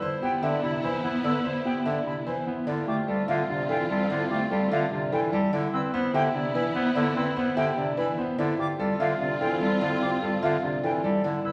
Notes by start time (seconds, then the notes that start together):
Already playing: B3 E4
0.02 E4 C5
0.22 B3 E4 G4 G5
0.43 D3 D4 E4 E5
0.63 C3 E4 B5
0.83 E3 E4 B4 C5
1.04 B3 E4
1.24 D3 E4 B4 D5 E6
1.45 E4 C5
1.65 B3 E4 G4 G5
1.85 D3 D4 E4 E5
2.06 C3 E4 B5
2.26 E3 E4 B4 C5
2.47 B3 E4
2.67 D3 C4 E4 F4 D5
2.87 A3 F4 G4 D6
3.08 G3 F4 A4
3.28 D3 F4 E5 F5
3.49 C3 D4 F4
3.69 E3 E4 F4 A4 G5
3.90 G3 F4 A4
4.10 D3 E4 F4 D5
4.31 A3 F4 G4 D6
4.51 G3 F4 A4
4.71 D3 F4 E5 F5
4.92 C3 D4 F4
5.12 E3 E4 F4 A4 G5
5.33 G3 A4
5.53 D3 B3 E4 D5
5.73 C4 E4 B4 E6
5.93 B3 E4 C5
6.14 D3 E4 G4 E5 G5
6.34 C3 D4 E4
6.55 E3 E4 B4 B5
6.75 B3 E4 C5
6.95 D3 E4 D5
7.16 C4 E4 B4 E6
7.37 B3 E4 C5
7.57 D3 E4 G4 E5 G5
7.77 C3 D4 E4
7.97 E3 E4 B4 B5
8.18 B3 C5
8.38 D3 C4 E4 F4 D5
8.59 F4 G4 D6
8.79 G3 F4 A4
9.00 D3 F4 E5 F5
9.20 C3 D4 F4
9.41 E3 E4 F4 A4 G5
9.61 G3 F4 A4
9.81 D3 E4 F4 D5
10.02 F4 G4 D6
10.22 G3 F4 A4
10.42 D3 F4 E5 F5
10.63 C3 D4 F4
10.83 E3 E4 F4 A4 G5
11.04 G3 A4
11.24 D3 B3 E4 D5
11.45 E4 B4 E6